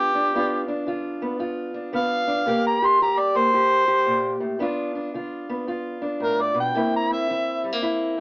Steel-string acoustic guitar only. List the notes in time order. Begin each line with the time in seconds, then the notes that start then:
Already playing: D3 B3 D4 F4
0.15 D4
0.34 G2 B3 D4 F4
0.68 D4
0.87 D3 F4
1.22 B3
1.39 G2 F4
1.74 D4
1.93 D3 B3
2.28 D4
2.46 C3 A#3 G4
2.82 G4
3.02 E3 G4
3.35 A#3
3.54 G2 G4
3.88 G4
4.06 A#2
4.41 A2
4.59 G2 B3 D4 F4
4.95 D4
5.14 D3 F4
5.49 B3
5.67 G2 F4
6.02 D4
6.20 A2
6.54 B2
6.74 C3 A#3 C4 E4
7.10 C4
7.30 E3 E4
7.64 G3
7.73 A#3
7.82 G2 E4